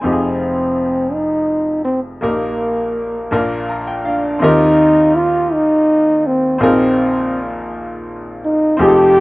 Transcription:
0.01 2.19 F1 soft
0.01 2.19 F2 medium
0.01 2.17 C4 medium
0.01 1.14 C4 medium
0.01 2.18 D#4 medium
0.01 2.19 F4 soft
0.06 0.11 G4 soft
0.12 2.23 G#4 medium
1.13 1.84 D#4 medium
1.85 2.01 C4 medium
2.21 3.28 A#1 medium
2.21 3.28 A#2 soft
2.21 3.29 A#3 medium
2.21 3.65 A#3 medium
2.21 3.32 D#4 soft
2.21 3.32 G4 soft
2.21 3.32 A#4 medium
3.31 4.37 A#1 medium
3.31 4.37 A#2 medium
3.31 4.41 A#3 medium
3.31 4.41 D4 medium
3.31 4.40 F4 medium
3.31 4.42 A#4 medium
3.69 3.86 A#5 medium
3.87 4.04 G5 soft
4.05 4.44 D4 medium
4.05 4.39 F5 medium
4.39 6.56 D#2 medium
4.39 6.56 D#3 medium
4.39 6.55 C4 medium
4.39 6.56 D#4 medium
4.39 5.17 D#4 loud
4.39 6.56 F4 medium
4.39 6.57 G4 medium
4.44 6.57 A#4 medium
5.16 5.54 F4 medium
5.53 6.28 D#4 loud
6.27 6.62 C4 medium
6.58 8.75 A#1 medium
6.58 8.75 A#2 medium
6.58 8.74 C4 medium
6.58 8.75 D#4 medium
6.58 8.75 F4 medium
6.58 8.76 G#4 medium
6.63 7.40 C4 medium
6.63 8.76 A#4 medium
8.45 8.84 D#4 medium
8.77 9.20 F1 medium
8.77 9.20 F2 medium
8.77 9.20 C4 medium
8.77 9.20 D#4 medium
8.77 9.20 F4 medium
8.77 9.20 G4 medium
8.82 9.20 G4 loud
8.82 8.87 G#4 medium
8.88 9.20 A4 medium

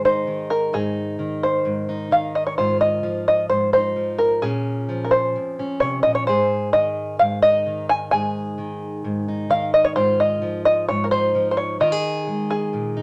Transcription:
0.00 0.72 G#2 soft
0.00 0.26 D#3 soft
0.00 0.74 G#3 soft
0.00 2.39 G#4 soft
0.05 0.73 D#4 soft
0.05 0.52 C5 medium
0.27 1.18 D#3 soft
0.50 0.74 A#4 medium
0.73 1.65 G#2 medium
0.73 1.88 D#4 soft
0.73 1.45 G#4 medium
1.19 2.10 D#3 soft
1.43 2.12 C5 medium
1.65 2.55 G#2 soft
1.89 2.55 D#4 soft
2.11 3.03 D#3 soft
2.11 2.35 F5 medium
2.35 2.46 D#5 medium
2.47 2.57 C#5 medium
2.58 3.49 G#2 medium
2.58 6.28 F4 soft
2.58 2.79 C5 medium
2.81 3.27 D#5 medium
3.03 3.95 F3 soft
3.28 3.49 D#5 medium
3.50 4.40 G#2 soft
3.50 3.71 C5 medium
3.73 4.40 D#4 soft
3.73 4.21 C5 medium
3.96 4.40 F3 soft
4.18 4.43 A#4 medium
4.42 5.35 A#2 medium
4.42 5.58 C#4 soft
4.42 5.06 G#4 medium
4.89 6.25 F3 medium
5.04 5.12 A#4 soft
5.11 5.77 C5 medium
5.36 6.28 F2 medium
5.59 6.25 C#4 soft
5.80 6.04 C3 soft
5.80 6.03 C#5 medium
6.03 6.28 A#2 soft
6.03 6.14 D#5 medium
6.15 6.27 C#5 medium
6.27 7.20 G#2 medium
6.27 8.13 G#4 medium
6.27 6.73 C5 medium
6.73 7.65 D#3 soft
6.73 7.16 D#5 medium
7.19 8.12 G#2 soft
7.19 7.42 F5 medium
7.42 9.28 D#4 soft
7.42 7.89 D#5 medium
7.66 8.57 D#3 soft
7.89 8.10 G#5 medium
8.11 9.04 G#2 medium
8.11 9.96 G#4 soft
8.11 9.50 G#5 medium
8.58 9.49 D#3 soft
9.04 9.94 G#2 medium
9.28 10.00 D#4 soft
9.50 10.41 D#3 soft
9.50 9.73 F5 medium
9.74 9.86 D#5 medium
9.85 9.95 C#5 medium
9.96 10.88 G#2 medium
9.96 11.79 F4 medium
9.96 10.18 C5 medium
10.20 10.64 D#5 medium
10.42 11.34 F3 soft
10.65 10.87 D#5 medium
10.89 11.78 G#2 medium
10.89 11.05 C#5 medium
11.04 11.11 A#4 medium
11.11 11.84 D#4 soft
11.11 11.50 C5 medium
11.35 11.78 F3 soft
11.51 11.58 C5 medium
11.57 11.79 C#5 medium
11.80 13.02 D#3 medium
11.80 11.92 F4 medium
11.80 12.52 D#5 medium
11.92 13.02 G#4 soft
12.27 13.02 G#3 soft
12.51 13.02 G#4 medium
12.73 13.02 A#2 soft
12.97 13.02 D#4 soft

